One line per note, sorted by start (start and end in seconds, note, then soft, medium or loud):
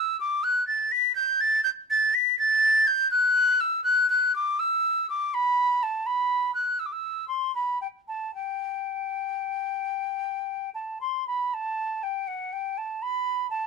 0.00 0.18 E6 loud
0.20 0.45 D6 loud
0.43 0.66 F#6 loud
0.67 0.93 A6 loud
0.91 1.14 B6 loud
1.15 1.42 G6 loud
1.40 1.63 A6 loud
1.63 1.69 G6 loud
1.90 2.15 A6 loud
2.14 2.38 B6 loud
2.39 2.88 A6 loud
2.87 3.10 G6 loud
3.10 3.61 F#6 loud
3.60 3.83 E6 loud
3.84 4.08 F#6 loud
4.09 4.34 F#6 loud
4.35 4.60 D6 loud
4.59 5.09 E6 loud
5.09 5.35 D6 loud
5.33 5.84 B5 loud
5.82 6.07 A5 loud
6.06 6.53 B5 loud
6.54 6.80 F#6 medium
6.79 6.87 E6 medium
6.85 6.93 D6 medium
6.92 7.27 E6 medium
7.28 7.54 C6 medium
7.55 7.80 B5 medium
7.81 7.87 G5 medium
8.08 8.34 A5 medium
8.34 10.69 G5 medium
10.74 10.98 A5 medium
11.00 11.26 C6 medium
11.27 11.55 B5 medium
11.53 12.04 A5 medium
12.03 12.29 G5 medium
12.27 12.54 F#5 medium
12.52 12.79 G5 medium
12.77 13.03 A5 medium
13.02 13.49 B5 medium
13.50 13.67 A5 medium